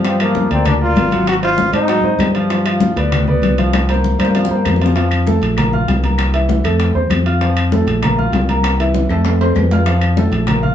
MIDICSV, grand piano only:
0, 0, Header, 1, 2, 480
1, 0, Start_track
1, 0, Key_signature, -1, "major"
1, 0, Tempo, 306748
1, 72, Time_signature, 4, 2, 24, 8
1, 16820, End_track
2, 0, Start_track
2, 0, Title_t, "Grand piano"
2, 0, Program_c, 0, 0
2, 79, Note_on_c, 0, 53, 77
2, 85, Note_on_c, 0, 65, 78
2, 93, Note_on_c, 0, 77, 69
2, 274, Note_off_c, 0, 53, 0
2, 277, Note_off_c, 0, 65, 0
2, 282, Note_off_c, 0, 77, 0
2, 317, Note_on_c, 0, 53, 90
2, 322, Note_on_c, 0, 65, 79
2, 323, Note_on_c, 0, 77, 86
2, 710, Note_off_c, 0, 53, 0
2, 713, Note_off_c, 0, 65, 0
2, 713, Note_off_c, 0, 77, 0
2, 787, Note_on_c, 0, 58, 79
2, 796, Note_on_c, 0, 70, 78
2, 800, Note_on_c, 0, 74, 80
2, 1184, Note_off_c, 0, 58, 0
2, 1190, Note_off_c, 0, 70, 0
2, 1192, Note_off_c, 0, 74, 0
2, 1271, Note_on_c, 0, 58, 75
2, 1273, Note_on_c, 0, 70, 78
2, 1281, Note_on_c, 0, 74, 73
2, 1667, Note_off_c, 0, 58, 0
2, 1668, Note_off_c, 0, 70, 0
2, 1673, Note_off_c, 0, 74, 0
2, 1750, Note_on_c, 0, 54, 84
2, 1755, Note_on_c, 0, 66, 79
2, 1762, Note_on_c, 0, 78, 78
2, 2147, Note_off_c, 0, 54, 0
2, 2150, Note_off_c, 0, 66, 0
2, 2154, Note_off_c, 0, 78, 0
2, 2230, Note_on_c, 0, 60, 73
2, 2235, Note_on_c, 0, 72, 80
2, 2238, Note_on_c, 0, 75, 77
2, 2627, Note_off_c, 0, 60, 0
2, 2630, Note_off_c, 0, 72, 0
2, 2632, Note_off_c, 0, 75, 0
2, 2707, Note_on_c, 0, 60, 75
2, 2712, Note_on_c, 0, 72, 72
2, 2718, Note_on_c, 0, 75, 72
2, 2909, Note_off_c, 0, 60, 0
2, 2912, Note_off_c, 0, 72, 0
2, 2915, Note_off_c, 0, 75, 0
2, 2951, Note_on_c, 0, 54, 79
2, 2954, Note_on_c, 0, 66, 83
2, 2961, Note_on_c, 0, 78, 76
2, 3151, Note_off_c, 0, 54, 0
2, 3153, Note_off_c, 0, 66, 0
2, 3157, Note_off_c, 0, 78, 0
2, 3190, Note_on_c, 0, 60, 78
2, 3192, Note_on_c, 0, 72, 74
2, 3201, Note_on_c, 0, 75, 78
2, 3588, Note_off_c, 0, 60, 0
2, 3589, Note_off_c, 0, 72, 0
2, 3594, Note_off_c, 0, 75, 0
2, 3676, Note_on_c, 0, 53, 85
2, 3681, Note_on_c, 0, 65, 85
2, 3684, Note_on_c, 0, 77, 83
2, 3875, Note_off_c, 0, 53, 0
2, 3878, Note_off_c, 0, 65, 0
2, 3879, Note_off_c, 0, 77, 0
2, 3913, Note_on_c, 0, 53, 86
2, 3917, Note_on_c, 0, 65, 80
2, 3922, Note_on_c, 0, 77, 75
2, 4113, Note_off_c, 0, 53, 0
2, 4115, Note_off_c, 0, 65, 0
2, 4118, Note_off_c, 0, 77, 0
2, 4157, Note_on_c, 0, 53, 81
2, 4160, Note_on_c, 0, 65, 97
2, 4168, Note_on_c, 0, 77, 86
2, 4553, Note_off_c, 0, 53, 0
2, 4554, Note_off_c, 0, 65, 0
2, 4559, Note_off_c, 0, 77, 0
2, 4647, Note_on_c, 0, 59, 74
2, 4653, Note_on_c, 0, 71, 86
2, 4660, Note_on_c, 0, 74, 77
2, 5039, Note_off_c, 0, 59, 0
2, 5042, Note_off_c, 0, 71, 0
2, 5046, Note_off_c, 0, 74, 0
2, 5128, Note_on_c, 0, 59, 86
2, 5130, Note_on_c, 0, 71, 88
2, 5134, Note_on_c, 0, 74, 77
2, 5520, Note_off_c, 0, 59, 0
2, 5520, Note_off_c, 0, 71, 0
2, 5523, Note_off_c, 0, 74, 0
2, 5605, Note_on_c, 0, 53, 80
2, 5612, Note_on_c, 0, 65, 73
2, 5616, Note_on_c, 0, 77, 80
2, 5997, Note_off_c, 0, 53, 0
2, 6002, Note_off_c, 0, 65, 0
2, 6004, Note_off_c, 0, 77, 0
2, 6086, Note_on_c, 0, 58, 72
2, 6092, Note_on_c, 0, 70, 79
2, 6095, Note_on_c, 0, 72, 78
2, 6478, Note_off_c, 0, 58, 0
2, 6482, Note_off_c, 0, 70, 0
2, 6483, Note_off_c, 0, 72, 0
2, 6562, Note_on_c, 0, 58, 79
2, 6569, Note_on_c, 0, 70, 75
2, 6570, Note_on_c, 0, 72, 85
2, 6759, Note_off_c, 0, 58, 0
2, 6763, Note_off_c, 0, 70, 0
2, 6764, Note_off_c, 0, 72, 0
2, 6805, Note_on_c, 0, 53, 77
2, 6809, Note_on_c, 0, 65, 73
2, 6815, Note_on_c, 0, 77, 71
2, 7001, Note_off_c, 0, 53, 0
2, 7003, Note_off_c, 0, 65, 0
2, 7007, Note_off_c, 0, 77, 0
2, 7049, Note_on_c, 0, 58, 75
2, 7055, Note_on_c, 0, 70, 73
2, 7059, Note_on_c, 0, 72, 77
2, 7440, Note_off_c, 0, 58, 0
2, 7443, Note_off_c, 0, 70, 0
2, 7446, Note_off_c, 0, 72, 0
2, 7523, Note_on_c, 0, 53, 74
2, 7529, Note_on_c, 0, 65, 82
2, 7529, Note_on_c, 0, 77, 74
2, 7719, Note_off_c, 0, 53, 0
2, 7723, Note_off_c, 0, 65, 0
2, 7723, Note_off_c, 0, 77, 0
2, 7759, Note_on_c, 0, 53, 77
2, 7761, Note_on_c, 0, 65, 80
2, 7768, Note_on_c, 0, 77, 71
2, 8154, Note_off_c, 0, 53, 0
2, 8155, Note_off_c, 0, 65, 0
2, 8159, Note_off_c, 0, 77, 0
2, 8241, Note_on_c, 0, 57, 71
2, 8246, Note_on_c, 0, 69, 74
2, 8249, Note_on_c, 0, 81, 82
2, 8635, Note_off_c, 0, 57, 0
2, 8638, Note_off_c, 0, 69, 0
2, 8640, Note_off_c, 0, 81, 0
2, 8707, Note_on_c, 0, 58, 69
2, 8716, Note_on_c, 0, 70, 67
2, 8722, Note_on_c, 0, 82, 74
2, 8910, Note_off_c, 0, 58, 0
2, 8915, Note_off_c, 0, 70, 0
2, 8918, Note_off_c, 0, 82, 0
2, 8968, Note_on_c, 0, 65, 83
2, 8971, Note_on_c, 0, 77, 74
2, 8976, Note_on_c, 0, 89, 76
2, 9358, Note_off_c, 0, 65, 0
2, 9360, Note_off_c, 0, 77, 0
2, 9363, Note_off_c, 0, 89, 0
2, 9453, Note_on_c, 0, 58, 75
2, 9454, Note_on_c, 0, 70, 67
2, 9459, Note_on_c, 0, 82, 79
2, 9841, Note_off_c, 0, 58, 0
2, 9842, Note_off_c, 0, 70, 0
2, 9845, Note_off_c, 0, 82, 0
2, 9914, Note_on_c, 0, 52, 80
2, 9918, Note_on_c, 0, 64, 83
2, 9922, Note_on_c, 0, 76, 90
2, 10309, Note_off_c, 0, 52, 0
2, 10312, Note_off_c, 0, 64, 0
2, 10314, Note_off_c, 0, 76, 0
2, 10400, Note_on_c, 0, 57, 80
2, 10402, Note_on_c, 0, 69, 83
2, 10406, Note_on_c, 0, 81, 82
2, 10793, Note_off_c, 0, 57, 0
2, 10794, Note_off_c, 0, 69, 0
2, 10797, Note_off_c, 0, 81, 0
2, 10871, Note_on_c, 0, 60, 77
2, 10876, Note_on_c, 0, 72, 80
2, 10878, Note_on_c, 0, 84, 86
2, 11267, Note_off_c, 0, 60, 0
2, 11270, Note_off_c, 0, 72, 0
2, 11271, Note_off_c, 0, 84, 0
2, 11361, Note_on_c, 0, 65, 80
2, 11365, Note_on_c, 0, 77, 75
2, 11368, Note_on_c, 0, 89, 73
2, 11557, Note_off_c, 0, 65, 0
2, 11559, Note_off_c, 0, 77, 0
2, 11561, Note_off_c, 0, 89, 0
2, 11599, Note_on_c, 0, 53, 80
2, 11600, Note_on_c, 0, 65, 74
2, 11609, Note_on_c, 0, 77, 76
2, 11992, Note_off_c, 0, 53, 0
2, 11992, Note_off_c, 0, 65, 0
2, 11998, Note_off_c, 0, 77, 0
2, 12079, Note_on_c, 0, 57, 72
2, 12085, Note_on_c, 0, 69, 69
2, 12091, Note_on_c, 0, 81, 74
2, 12471, Note_off_c, 0, 57, 0
2, 12475, Note_off_c, 0, 69, 0
2, 12478, Note_off_c, 0, 81, 0
2, 12561, Note_on_c, 0, 58, 75
2, 12567, Note_on_c, 0, 70, 75
2, 12574, Note_on_c, 0, 82, 69
2, 12755, Note_off_c, 0, 58, 0
2, 12759, Note_off_c, 0, 70, 0
2, 12764, Note_off_c, 0, 82, 0
2, 12798, Note_on_c, 0, 65, 83
2, 12806, Note_on_c, 0, 77, 76
2, 12807, Note_on_c, 0, 89, 77
2, 13190, Note_off_c, 0, 65, 0
2, 13195, Note_off_c, 0, 77, 0
2, 13196, Note_off_c, 0, 89, 0
2, 13284, Note_on_c, 0, 58, 70
2, 13288, Note_on_c, 0, 70, 75
2, 13295, Note_on_c, 0, 82, 73
2, 13673, Note_off_c, 0, 58, 0
2, 13676, Note_off_c, 0, 70, 0
2, 13680, Note_off_c, 0, 82, 0
2, 13767, Note_on_c, 0, 52, 87
2, 13769, Note_on_c, 0, 64, 89
2, 13775, Note_on_c, 0, 76, 84
2, 14155, Note_off_c, 0, 52, 0
2, 14156, Note_off_c, 0, 64, 0
2, 14160, Note_off_c, 0, 76, 0
2, 14244, Note_on_c, 0, 57, 81
2, 14245, Note_on_c, 0, 69, 78
2, 14250, Note_on_c, 0, 81, 81
2, 14633, Note_off_c, 0, 57, 0
2, 14633, Note_off_c, 0, 69, 0
2, 14636, Note_off_c, 0, 81, 0
2, 14721, Note_on_c, 0, 60, 82
2, 14723, Note_on_c, 0, 72, 80
2, 14731, Note_on_c, 0, 84, 82
2, 15111, Note_off_c, 0, 60, 0
2, 15112, Note_off_c, 0, 72, 0
2, 15117, Note_off_c, 0, 84, 0
2, 15206, Note_on_c, 0, 65, 68
2, 15206, Note_on_c, 0, 77, 68
2, 15213, Note_on_c, 0, 89, 74
2, 15397, Note_off_c, 0, 65, 0
2, 15397, Note_off_c, 0, 77, 0
2, 15401, Note_off_c, 0, 89, 0
2, 15430, Note_on_c, 0, 53, 78
2, 15435, Note_on_c, 0, 65, 80
2, 15446, Note_on_c, 0, 77, 82
2, 15824, Note_off_c, 0, 53, 0
2, 15827, Note_off_c, 0, 65, 0
2, 15833, Note_off_c, 0, 77, 0
2, 15913, Note_on_c, 0, 57, 75
2, 15917, Note_on_c, 0, 69, 78
2, 15923, Note_on_c, 0, 81, 78
2, 16305, Note_off_c, 0, 57, 0
2, 16308, Note_off_c, 0, 69, 0
2, 16311, Note_off_c, 0, 81, 0
2, 16393, Note_on_c, 0, 58, 69
2, 16401, Note_on_c, 0, 82, 72
2, 16402, Note_on_c, 0, 70, 73
2, 16589, Note_off_c, 0, 58, 0
2, 16593, Note_off_c, 0, 70, 0
2, 16593, Note_off_c, 0, 82, 0
2, 16628, Note_on_c, 0, 65, 72
2, 16630, Note_on_c, 0, 77, 85
2, 16637, Note_on_c, 0, 89, 76
2, 16820, Note_off_c, 0, 65, 0
2, 16820, Note_off_c, 0, 77, 0
2, 16820, Note_off_c, 0, 89, 0
2, 16820, End_track
0, 0, End_of_file